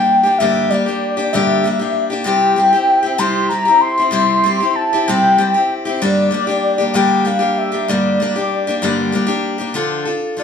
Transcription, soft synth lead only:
0, 0, Header, 1, 2, 480
1, 0, Start_track
1, 0, Tempo, 623701
1, 309, Time_signature, 6, 3, 24, 8
1, 8031, End_track
2, 0, Start_track
2, 0, Title_t, "Soft synth lead"
2, 0, Program_c, 0, 80
2, 0, Note_on_c, 0, 79, 97
2, 294, Note_on_c, 0, 76, 97
2, 306, Note_off_c, 0, 79, 0
2, 540, Note_on_c, 0, 74, 104
2, 551, Note_off_c, 0, 76, 0
2, 1021, Note_on_c, 0, 76, 96
2, 1032, Note_off_c, 0, 74, 0
2, 1563, Note_off_c, 0, 76, 0
2, 1733, Note_on_c, 0, 79, 106
2, 2454, Note_on_c, 0, 84, 102
2, 2466, Note_off_c, 0, 79, 0
2, 2683, Note_off_c, 0, 84, 0
2, 2687, Note_on_c, 0, 82, 100
2, 2931, Note_on_c, 0, 84, 104
2, 2943, Note_off_c, 0, 82, 0
2, 3172, Note_off_c, 0, 84, 0
2, 3177, Note_on_c, 0, 84, 108
2, 3658, Note_on_c, 0, 81, 98
2, 3670, Note_off_c, 0, 84, 0
2, 3900, Note_on_c, 0, 79, 102
2, 3912, Note_off_c, 0, 81, 0
2, 4441, Note_off_c, 0, 79, 0
2, 4622, Note_on_c, 0, 74, 104
2, 5348, Note_on_c, 0, 79, 89
2, 5359, Note_off_c, 0, 74, 0
2, 5587, Note_on_c, 0, 77, 92
2, 5599, Note_off_c, 0, 79, 0
2, 5832, Note_on_c, 0, 76, 89
2, 5844, Note_off_c, 0, 77, 0
2, 6074, Note_on_c, 0, 74, 95
2, 6086, Note_off_c, 0, 76, 0
2, 7030, Note_off_c, 0, 74, 0
2, 7997, Note_on_c, 0, 74, 92
2, 8031, Note_off_c, 0, 74, 0
2, 8031, End_track
0, 0, End_of_file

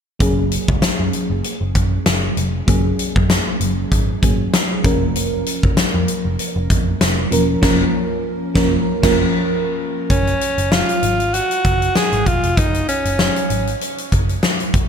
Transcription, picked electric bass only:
0, 0, Header, 1, 3, 480
1, 0, Start_track
1, 0, Key_signature, 6, "major"
1, 0, Tempo, 618557
1, 158, Time_signature, 4, 2, 24, 8
1, 11550, End_track
2, 0, Start_track
2, 0, Title_t, "Picked electric bass"
2, 0, Program_c, 0, 34
2, 158, Note_on_c, 0, 30, 102
2, 437, Note_off_c, 0, 30, 0
2, 531, Note_on_c, 0, 37, 81
2, 612, Note_off_c, 0, 37, 0
2, 769, Note_on_c, 0, 42, 78
2, 850, Note_off_c, 0, 42, 0
2, 1008, Note_on_c, 0, 30, 85
2, 1090, Note_off_c, 0, 30, 0
2, 1248, Note_on_c, 0, 30, 84
2, 1330, Note_off_c, 0, 30, 0
2, 1359, Note_on_c, 0, 42, 96
2, 1538, Note_off_c, 0, 42, 0
2, 1597, Note_on_c, 0, 30, 78
2, 1778, Note_off_c, 0, 30, 0
2, 1838, Note_on_c, 0, 29, 84
2, 2018, Note_off_c, 0, 29, 0
2, 2079, Note_on_c, 0, 30, 100
2, 2258, Note_off_c, 0, 30, 0
2, 2451, Note_on_c, 0, 42, 91
2, 2631, Note_off_c, 0, 42, 0
2, 2797, Note_on_c, 0, 30, 92
2, 2978, Note_off_c, 0, 30, 0
2, 3039, Note_on_c, 0, 32, 87
2, 3219, Note_off_c, 0, 32, 0
2, 3281, Note_on_c, 0, 32, 80
2, 3460, Note_off_c, 0, 32, 0
2, 3760, Note_on_c, 0, 29, 90
2, 4218, Note_off_c, 0, 29, 0
2, 4371, Note_on_c, 0, 29, 83
2, 4452, Note_off_c, 0, 29, 0
2, 4612, Note_on_c, 0, 41, 86
2, 4692, Note_off_c, 0, 41, 0
2, 4850, Note_on_c, 0, 29, 77
2, 4931, Note_off_c, 0, 29, 0
2, 5090, Note_on_c, 0, 29, 92
2, 5171, Note_off_c, 0, 29, 0
2, 5200, Note_on_c, 0, 41, 90
2, 5379, Note_off_c, 0, 41, 0
2, 5441, Note_on_c, 0, 29, 90
2, 5620, Note_off_c, 0, 29, 0
2, 5679, Note_on_c, 0, 28, 86
2, 5859, Note_off_c, 0, 28, 0
2, 5919, Note_on_c, 0, 29, 97
2, 6086, Note_off_c, 0, 29, 0
2, 6639, Note_on_c, 0, 29, 91
2, 6806, Note_off_c, 0, 29, 0
2, 7011, Note_on_c, 0, 29, 98
2, 7170, Note_off_c, 0, 29, 0
2, 7838, Note_on_c, 0, 30, 91
2, 8018, Note_off_c, 0, 30, 0
2, 8209, Note_on_c, 0, 30, 78
2, 8390, Note_off_c, 0, 30, 0
2, 8558, Note_on_c, 0, 32, 69
2, 8837, Note_off_c, 0, 32, 0
2, 9039, Note_on_c, 0, 30, 77
2, 9219, Note_off_c, 0, 30, 0
2, 9409, Note_on_c, 0, 32, 74
2, 9490, Note_off_c, 0, 32, 0
2, 9516, Note_on_c, 0, 28, 75
2, 9616, Note_off_c, 0, 28, 0
2, 9649, Note_on_c, 0, 29, 75
2, 9730, Note_off_c, 0, 29, 0
2, 9757, Note_on_c, 0, 30, 93
2, 9938, Note_off_c, 0, 30, 0
2, 10129, Note_on_c, 0, 30, 82
2, 10309, Note_off_c, 0, 30, 0
2, 10477, Note_on_c, 0, 32, 73
2, 10658, Note_off_c, 0, 32, 0
2, 10959, Note_on_c, 0, 30, 76
2, 11139, Note_off_c, 0, 30, 0
2, 11437, Note_on_c, 0, 29, 82
2, 11550, Note_off_c, 0, 29, 0
2, 11550, End_track
3, 0, Start_track
3, 0, Title_t, "Muted picked electric bass strokes"
3, 638, Note_on_c, 9, 29, 43
3, 715, Note_off_c, 9, 29, 0
3, 4480, Note_on_c, 9, 29, 45
3, 4558, Note_off_c, 9, 29, 0
3, 11550, End_track
0, 0, End_of_file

